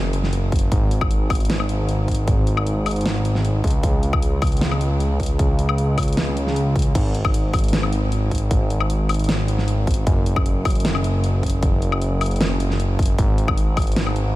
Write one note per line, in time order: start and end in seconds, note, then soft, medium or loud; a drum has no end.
0.00 0.70 F#1 medium
0.13 closed hi-hat medium
0.23 snare soft
0.33 closed hi-hat medium
0.52 kick loud
0.52 closed hi-hat medium
0.56 closed hi-hat medium
0.59 closed hi-hat medium
0.72 3.62 G#1 loud
0.72 kick loud
0.72 closed hi-hat medium
0.91 closed hi-hat medium
1.01 kick loud
1.01 high woodblock medium
1.11 closed hi-hat medium
1.30 kick loud
1.30 open hi-hat medium
1.30 high woodblock medium
1.35 closed hi-hat medium
1.40 closed hi-hat soft
1.45 closed hi-hat medium
1.50 snare loud
1.50 closed hi-hat medium
1.60 high woodblock medium
1.69 closed hi-hat medium
1.89 closed hi-hat medium
2.08 kick medium
2.08 closed hi-hat soft
2.11 closed hi-hat medium
2.15 closed hi-hat medium
2.28 kick loud
2.28 closed hi-hat medium
2.47 closed hi-hat medium
2.57 high woodblock medium
2.67 closed hi-hat medium
2.86 open hi-hat medium
2.86 high woodblock medium
2.91 closed hi-hat medium
2.96 closed hi-hat soft
3.01 closed hi-hat medium
3.06 snare loud
3.06 closed hi-hat medium
3.25 closed hi-hat medium
3.35 snare soft
3.45 closed hi-hat medium
3.64 6.93 C#2 medium
3.64 kick loud
3.64 closed hi-hat soft
3.67 closed hi-hat medium
3.70 closed hi-hat medium
3.83 kick loud
3.83 closed hi-hat medium
4.03 closed hi-hat medium
4.13 kick loud
4.13 high woodblock medium
4.22 closed hi-hat medium
4.42 kick loud
4.42 open hi-hat loud
4.42 high woodblock medium
4.47 closed hi-hat medium
4.52 closed hi-hat soft
4.57 closed hi-hat medium
4.61 snare loud
4.61 closed hi-hat medium
4.71 high woodblock medium
4.81 closed hi-hat medium
5.00 closed hi-hat medium
5.20 kick medium
5.20 closed hi-hat medium
5.23 closed hi-hat medium
5.26 closed hi-hat medium
5.39 kick loud
5.39 closed hi-hat medium
5.59 closed hi-hat medium
5.69 high woodblock medium
5.78 closed hi-hat medium
5.98 kick medium
5.98 open hi-hat loud
5.98 high woodblock medium
6.03 closed hi-hat medium
6.08 closed hi-hat soft
6.13 closed hi-hat medium
6.17 snare loud
6.17 closed hi-hat medium
6.37 closed hi-hat medium
6.47 snare soft
6.56 closed hi-hat medium
6.76 kick loud
6.76 closed hi-hat medium
6.79 closed hi-hat medium
6.82 closed hi-hat medium
6.95 10.05 G#1 loud
6.95 kick loud
6.95 closed hi-hat medium
6.95 crash medium
7.15 closed hi-hat medium
7.25 kick loud
7.25 high woodblock medium
7.34 closed hi-hat medium
7.53 kick loud
7.53 open hi-hat loud
7.53 high woodblock medium
7.59 closed hi-hat medium
7.64 closed hi-hat medium
7.68 closed hi-hat medium
7.73 snare loud
7.73 closed hi-hat medium
7.83 high woodblock medium
7.92 closed hi-hat medium
8.12 closed hi-hat medium
8.31 kick medium
8.31 closed hi-hat medium
8.35 closed hi-hat medium
8.38 closed hi-hat medium
8.51 kick loud
8.51 closed hi-hat medium
8.70 closed hi-hat medium
8.80 high woodblock medium
8.90 closed hi-hat medium
9.09 open hi-hat loud
9.09 high woodblock medium
9.14 closed hi-hat medium
9.19 closed hi-hat medium
9.24 closed hi-hat medium
9.29 snare loud
9.29 closed hi-hat medium
9.48 closed hi-hat medium
9.58 snare soft
9.68 closed hi-hat medium
9.87 kick loud
9.87 closed hi-hat medium
9.91 closed hi-hat medium
9.94 closed hi-hat medium
10.07 13.17 F#1 medium
10.07 kick loud
10.07 closed hi-hat medium
10.26 closed hi-hat medium
10.36 kick loud
10.36 high woodblock medium
10.46 closed hi-hat medium
10.65 kick loud
10.65 open hi-hat medium
10.65 high woodblock medium
10.70 closed hi-hat medium
10.75 closed hi-hat soft
10.80 closed hi-hat medium
10.85 snare loud
10.85 closed hi-hat medium
10.95 high woodblock medium
11.04 closed hi-hat medium
11.24 closed hi-hat medium
11.43 kick medium
11.43 closed hi-hat medium
11.46 closed hi-hat medium
11.50 closed hi-hat medium
11.63 kick loud
11.63 closed hi-hat medium
11.82 closed hi-hat medium
11.92 high woodblock medium
12.02 closed hi-hat medium
12.21 open hi-hat medium
12.21 high woodblock medium
12.26 closed hi-hat medium
12.31 closed hi-hat soft
12.36 closed hi-hat medium
12.41 snare loud
12.41 closed hi-hat medium
12.60 closed hi-hat medium
12.70 snare soft
12.80 closed hi-hat medium
12.99 kick loud
12.99 closed hi-hat soft
13.03 closed hi-hat medium
13.06 closed hi-hat medium
13.18 14.36 G#1 loud
13.18 kick loud
13.18 closed hi-hat medium
13.38 closed hi-hat medium
13.48 kick loud
13.48 high woodblock medium
13.58 closed hi-hat medium
13.77 kick loud
13.77 open hi-hat medium
13.77 high woodblock medium
13.82 closed hi-hat medium
13.87 closed hi-hat soft
13.92 closed hi-hat medium
13.96 snare loud
13.96 closed hi-hat medium
14.07 high woodblock medium
14.16 closed hi-hat medium